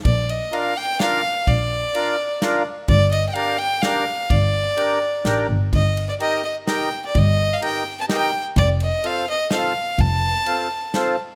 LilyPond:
<<
  \new Staff \with { instrumentName = "Fiddle" } { \time 3/4 \key bes \major \tempo 4 = 127 d''8 ees''8 f''8 g''8 f''4 | d''2~ d''8 r8 | d''8 ees''16. g''32 f''8 g''8 f''4 | d''2~ d''8 r8 |
ees''8. d''16 ees''8 ees''8 g''8. d''16 | ees''8. f''16 g''8. a''16 g''8. r16 | d''8 ees''8 f''8 ees''8 f''4 | a''2~ a''8 r8 | }
  \new Staff \with { instrumentName = "Accordion" } { \time 3/4 \key bes \major r4 <d' f' bes'>8 r8 <d' f' bes'>8 r8 | r4 <d' f' bes'>8 r8 <d' f' bes'>8 r8 | r4 <d' g' bes'>8 r8 <d' g' bes'>8 r8 | r4 <d' g' bes'>8 r8 <d' g' bes'>8 r8 |
r4 <ees' g' bes'>8 r8 <ees' g' bes'>8 r8 | r4 <ees' g' bes'>8 r8 <ees' g' bes'>8 r8 | r4 <c' f' a'>8 r8 <c' f' a'>8 r8 | r4 <c' f' a'>8 r8 <c' f' a'>8 r8 | }
  \new Staff \with { instrumentName = "Double bass" } { \clef bass \time 3/4 \key bes \major bes,,8 r2 r8 | bes,,8 r2 r8 | g,,8 r2 r8 | g,,8 r4. a,,8 g,,8 |
g,,8 r2 r8 | g,,8 r2 r8 | f,,8 r2 r8 | f,,8 r2 r8 | }
  \new DrumStaff \with { instrumentName = "Drums" } \drummode { \time 3/4 <bd cymr>8 cymr8 cymr4 <cymr sn>4 | <bd cymr>4 cymr4 <cymr sn>4 | <bd cymr>8 cymr8 cymr4 <cymr sn>4 | <bd cymr>4 cymr4 <cymr sn>4 |
<bd cymr>8 cymr8 cymr4 <cymr sn>4 | <bd cymr>4 cymr4 <cymr sn>4 | <bd cymr>8 cymr8 cymr4 <cymr sn>4 | <bd cymr>4 cymr4 <cymr sn>4 | }
>>